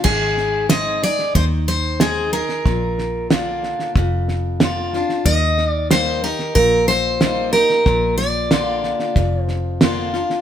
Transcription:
0.04 fingered electric bass G#1, steel-string acoustic guitar G#2 G#4, kick, snare, crash
0.37 snare
0.69 steel-string acoustic guitar G#3 C4 D#4 G#4 D#5, snare, hi-hat pedal
1.02 steel-string acoustic guitar D#4 G#4 D5, snare
1.19 snare
1.35 fingered electric bass D#2, steel-string acoustic guitar D#3 C5, kick, snare
1.68 steel-string acoustic guitar C5, snare
2.00 steel-string acoustic guitar G#3 C4 D#4 G#4, snare, hi-hat pedal
2.33 steel-string acoustic guitar D#4 G#4 A#4, snare
2.49 snare
2.65 fingered electric bass A#1, steel-string acoustic guitar A#2, kick, snare
2.98 snare
3.30 steel-string acoustic guitar D3 A#3 D4 F4, snare, hi-hat pedal
3.63 snare
3.79 snare
3.95 fingered electric bass F1, steel-string acoustic guitar F2, kick, snare
4.28 snare
4.60 steel-string acoustic guitar D3 A#3 D4 F4, snare, hi-hat pedal
4.93 steel-string acoustic guitar D4 F4, snare
5.09 snare
5.25 fingered electric bass D#2, steel-string acoustic guitar D#3 D#5, kick, snare
5.58 snare
5.69 steel-string acoustic guitar D5
5.91 steel-string acoustic guitar G3 A#3 D#4 G4 C5, snare, hi-hat pedal
6.23 steel-string acoustic guitar D#4 G4 A#4, snare
6.39 snare
6.55 fingered electric bass A#1, steel-string acoustic guitar A#2 A#4, kick, snare
6.88 steel-string acoustic guitar C5, snare
7.21 steel-string acoustic guitar G3 A#3 D#4 G4, snare, hi-hat pedal
7.53 steel-string acoustic guitar G4 A#4, snare
7.57 steel-string acoustic guitar D#4
7.70 snare
7.86 fingered electric bass A#1, steel-string acoustic guitar A#2, kick, snare
8.18 steel-string acoustic guitar D5, snare
8.51 steel-string acoustic guitar D3 A#3 D4 F4, snare, hi-hat pedal
8.83 snare
8.99 snare
9.15 fingered electric bass F1, steel-string acoustic guitar F2, kick, snare
9.43 steel-string acoustic guitar C5
9.48 snare
9.81 steel-string acoustic guitar D3 A#3 D4 F4, snare, hi-hat pedal
10.14 steel-string acoustic guitar D4 F4, snare
10.30 snare

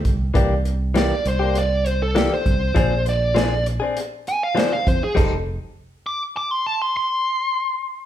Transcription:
0.05 fingered electric bass C2, kick, closed hi-hat
0.34 fingered electric bass C2, clean electric guitar E3 A#3 D4 G4, kick, closed hi-hat
0.65 closed hi-hat
0.94 clean electric guitar E3 A#3 D4 G4, lead electric guitar D5, snare, closed hi-hat
1.25 fingered electric bass C2, lead electric guitar C5, closed hi-hat
1.39 clean electric guitar A#3 D4 G4
1.55 lead electric guitar D5, closed hi-hat
1.86 lead electric guitar C5, closed hi-hat
2.03 lead electric guitar A4
2.15 clean electric guitar E3 A#3 D4 G4, snare, closed hi-hat
2.34 lead electric guitar C5
2.46 fingered electric bass C2, kick, closed hi-hat
2.75 fingered electric bass A#1, clean electric guitar F3 C4 D4 G#4, kick, closed hi-hat
3.06 lead electric guitar D5, closed hi-hat
3.35 clean electric guitar F3 C4 D4 G#4, snare, closed hi-hat
3.66 closed hi-hat
3.80 clean electric guitar C4 D4 G#4
3.97 closed hi-hat
4.27 lead electric guitar G#5, closed hi-hat
4.43 lead electric guitar F5
4.55 clean electric guitar F3 C4 D4 G#4, lead electric guitar C5, snare, closed hi-hat
4.72 lead electric guitar F5
4.87 fingered electric bass F2, lead electric guitar C5, kick, closed hi-hat
5.01 lead electric guitar G#4, muted fingered electric bass stroke
5.15 fingered electric bass F1, clean electric guitar G3 C4 D#4 A4, kick, closed hi-hat, crash
6.07 lead electric guitar D6
6.37 lead electric guitar D6
6.51 lead electric guitar C6
6.67 lead electric guitar A5
6.82 lead electric guitar C6
6.97 lead electric guitar C6

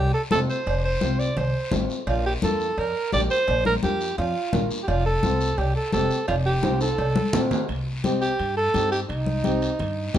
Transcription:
Already playing: upright bass C2, alto saxophone G4
0.14 alto saxophone A4
0.31 upright bass F1, nylon-string guitar A3 C4 F4, alto saxophone A4, high conga, low timbale, short guiro
0.49 alto saxophone C5, short guiro
0.66 upright bass F1, cowbell, long guiro
0.84 alto saxophone C5
1.01 upright bass C2, nylon-string guitar A3 C4 F4, high conga, short guiro
1.19 alto saxophone D5, short guiro
1.37 upright bass C2, alto saxophone C5, cowbell, low conga, long guiro
1.71 upright bass A1, nylon-string guitar A3 C4 F4, high conga, low conga, low timbale, short guiro
1.90 short guiro
2.07 upright bass A#1, alto saxophone F4, cowbell, long guiro
2.26 alto saxophone G4
2.42 upright bass F2, nylon-string guitar A#3 D4 F4, alto saxophone A4, high conga, short guiro
2.60 short guiro
2.78 upright bass F2, alto saxophone A#4, cowbell, long guiro
3.12 upright bass A#1, nylon-string guitar A#3 D4 G4, alto saxophone D5, high conga, low timbale, short guiro
3.30 alto saxophone C5, short guiro
3.48 upright bass A#1, cowbell, long guiro
3.65 alto saxophone A#4, high conga
3.83 upright bass F2, nylon-string guitar A#3 D4 F4, alto saxophone G4, high conga, short guiro
4.01 short guiro
4.18 upright bass F2, alto saxophone F4, cowbell, long guiro
4.53 upright bass A#1, nylon-string guitar A#3 D4 F4, high conga, low conga, low timbale, short guiro
4.71 short guiro
4.83 alto saxophone G4
4.88 upright bass F1, alto saxophone F4, cowbell, long guiro
5.06 alto saxophone A4
5.23 upright bass C2, nylon-string guitar A3 C4 F4, high conga, short guiro
5.41 short guiro
5.58 upright bass C2, alto saxophone G4, cowbell, long guiro
5.76 alto saxophone A4
5.92 upright bass F1, nylon-string guitar A3 C4 G4, alto saxophone A4, high conga, low timbale, short guiro
6.11 short guiro
6.28 upright bass F1, alto saxophone F4, cowbell, long guiro
6.46 alto saxophone G4
6.63 upright bass C2, nylon-string guitar A3 C4 F4, high conga, high timbale, short guiro
6.81 alto saxophone A4, high timbale, short guiro
6.98 upright bass C2, cowbell, long guiro
7.16 high conga
7.33 upright bass A#1, nylon-string guitar A3 C4 F4, low conga, low timbale, short guiro
7.51 low conga, low timbale, short guiro
7.69 upright bass C2, high timbale, long guiro
8.04 nylon-string guitar C4 D#4 G4, high conga, high timbale, short guiro
8.22 alto saxophone G4, high timbale, short guiro
8.39 upright bass G2, high timbale, long guiro
8.57 alto saxophone A4
8.73 upright bass G2, nylon-string guitar C4 D#4 G4, high conga, high timbale, short guiro
8.92 alto saxophone G4, high timbale, short guiro
9.09 upright bass C2, alto saxophone D#4, high timbale, long guiro
9.26 high conga
9.44 nylon-string guitar C4 D#4 G4, high conga, high timbale, short guiro
9.62 high timbale, short guiro
9.79 upright bass G2, low conga, high timbale, long guiro
10.14 upright bass G2, nylon-string guitar C4 D#4 G4, high conga, low conga, high timbale, low timbale, short guiro

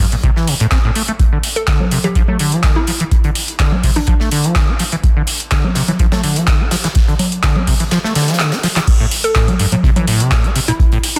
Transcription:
0.12 acid bass A#2, closed hi-hat
0.23 acid bass C3, kick, closed hi-hat
0.36 acid bass E3, snare
0.47 acid bass C3, closed hi-hat, open hi-hat
0.60 acid bass A2, closed hi-hat
0.71 acid bass C4, kick, snare, clap, closed hi-hat
0.84 acid bass A2
0.95 acid bass A3, closed hi-hat, open hi-hat
1.08 acid bass A3, closed hi-hat
1.19 kick, closed hi-hat
1.32 acid bass D3
1.43 closed hi-hat, open hi-hat
1.56 synth pluck A4, closed hi-hat
1.67 acid bass D3, kick, snare, clap, closed hi-hat
1.80 acid bass D4, low conga
1.91 acid bass C3, closed hi-hat, open hi-hat
2.04 acid bass E3, synth pluck G4, closed hi-hat, low conga
2.15 acid bass F3, kick, closed hi-hat
2.28 acid bass A3, low conga
2.39 acid bass D3, closed hi-hat, open hi-hat
2.52 acid bass F3, closed hi-hat
2.63 acid bass D3, kick, snare, clap, closed hi-hat
2.76 acid bass D4, synth pluck E4
2.87 acid bass F3, closed hi-hat, open hi-hat
3.00 acid bass E3, closed hi-hat
3.11 kick, closed hi-hat
3.24 acid bass D3, closed hi-hat
3.35 closed hi-hat, open hi-hat
3.48 closed hi-hat
3.59 acid bass D3, kick, snare, clap, closed hi-hat
3.72 acid bass D4, low conga
3.83 acid bass C3, kick, open hi-hat
3.96 acid bass E3, synth pluck D4, closed hi-hat
4.07 acid bass F3, synth pluck D4, kick, closed hi-hat
4.20 acid bass A3, snare
4.31 acid bass D3, closed hi-hat, open hi-hat
4.44 acid bass F3, closed hi-hat
4.55 acid bass D3, kick, snare, clap, closed hi-hat
4.68 acid bass D4
4.79 acid bass F3, closed hi-hat, open hi-hat
4.92 acid bass E3, closed hi-hat
5.04 kick, closed hi-hat
5.16 acid bass D3
5.27 closed hi-hat, open hi-hat
5.40 closed hi-hat
5.51 acid bass D3, kick, snare, clap, closed hi-hat
5.64 acid bass D4, low conga
5.75 acid bass C3, snare, closed hi-hat, open hi-hat
5.88 acid bass E3, closed hi-hat, low conga
5.99 acid bass F3, kick, closed hi-hat
6.12 acid bass A3, snare, closed hi-hat, low conga
6.24 acid bass D3, open hi-hat
6.36 acid bass F3, closed hi-hat
6.47 acid bass D3, kick, snare, clap, closed hi-hat
6.60 acid bass D4
6.71 acid bass F3, snare, closed hi-hat, open hi-hat
6.84 acid bass E3, snare, closed hi-hat
6.95 kick, snare, closed hi-hat
7.08 acid bass D3, closed hi-hat
7.19 closed hi-hat, open hi-hat, low conga
7.32 closed hi-hat
7.43 acid bass D3, kick, snare, clap, closed hi-hat
7.56 acid bass D4, low conga
7.67 acid bass C3, kick, open hi-hat
7.80 acid bass E3, closed hi-hat
7.91 acid bass F3, snare, closed hi-hat
8.04 acid bass A3, snare
8.15 acid bass D3, snare, closed hi-hat, open hi-hat
8.22 snare, closed hi-hat
8.28 acid bass F3, snare, closed hi-hat
8.33 snare, closed hi-hat
8.39 acid bass D3, snare, clap, closed hi-hat
8.52 acid bass D4, snare, closed hi-hat
8.63 acid bass F3, snare, closed hi-hat, open hi-hat
8.76 acid bass E3, snare, clap, closed hi-hat
8.87 kick, closed hi-hat, crash
9.00 acid bass A2
9.11 closed hi-hat, open hi-hat
9.24 synth pluck A4, closed hi-hat
9.35 acid bass A2, kick, snare, clap, closed hi-hat
9.48 acid bass A3, closed hi-hat, low conga
9.59 acid bass G2, closed hi-hat, open hi-hat
9.72 acid bass A#2, closed hi-hat, low conga
9.83 acid bass C3, kick, closed hi-hat
9.96 acid bass E3, closed hi-hat, low conga
10.08 acid bass A2, closed hi-hat, open hi-hat
10.20 acid bass C3, closed hi-hat
10.31 acid bass A2, kick, snare, clap, closed hi-hat
10.44 acid bass A3, closed hi-hat
10.56 acid bass C3, closed hi-hat, open hi-hat
10.68 acid bass A#2, synth pluck E4, closed hi-hat
10.79 kick, closed hi-hat
10.92 acid bass A2, closed hi-hat
11.03 closed hi-hat, open hi-hat
11.16 synth pluck D4, closed hi-hat

